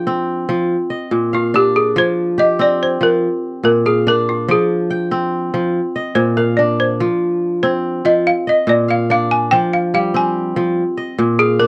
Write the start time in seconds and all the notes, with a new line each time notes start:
Already playing: F3 D4 G#4 G5
0.07 C4
0.49 F3
0.90 D#5
1.11 A#2
1.33 F4 F5
1.54 D4 G4
1.76 G#4
1.96 F3 C5
2.38 G4 D#5
2.59 C4 D5
2.83 C5
3.01 F3 A#4
3.63 A#2 A#4
3.86 G#4 F5
4.07 D4 A#4
4.29 F4
4.48 F3 G#4
4.90 G5
5.11 C4
5.54 F3
5.96 D#5
6.15 A#2 C5
6.37 A#4 F5
6.57 D4 D5
6.80 C5
7.00 F3
7.63 C4 C5
8.05 F3 D#5
8.27 F5
8.47 D#5
8.67 A#2 D5
8.88 F5
9.10 D4 F5
9.31 G#5
9.51 F3 G5
9.73 F5
9.94 G3 F5
10.14 C4 G#5
10.56 F3
10.97 D#5
11.19 A#2
11.39 G#4 F5
11.59 D4 A#4